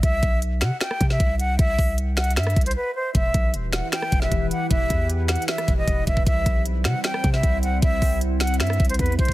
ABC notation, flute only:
X:1
M:4/4
L:1/16
Q:1/4=154
K:Clyd
V:1 name="Flute"
e4 z2 f2 g3 e3 f2 | e4 z2 f2 e3 c B2 c2 | e4 z2 f2 g3 e3 f2 | e4 z2 f2 e3 ^d3 e2 |
e4 z2 f2 g3 e3 f2 | e4 z2 f2 e3 c B2 c2 |]